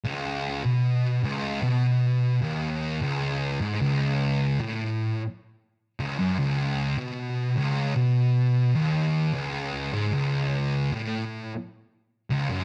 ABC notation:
X:1
M:4/4
L:1/16
Q:1/4=76
K:Bdor
V:1 name="Distorted electric guitar" clef=bass
C,,3 B,,3 C,,2 B,,4 ^D,,3 C,,- | C,,2 G,, C,,4 A,,3 z4 C,, F,, | C,,3 B,,3 C,,2 B,,4 ^D,,3 C,,- | C,,2 G,, C,,4 A,,3 z4 C,, F,, |]
V:2 name="Distorted electric guitar" clef=bass
C,,3 B,,3 C,,2 B,,4 ^D,,3 C,,- | C,,2 G,, C,,4 A,,3 z4 C,, F,, | C,,3 B,,3 C,,2 B,,4 ^D,,3 C,,- | C,,2 G,, C,,4 A,,3 z4 C,, F,, |]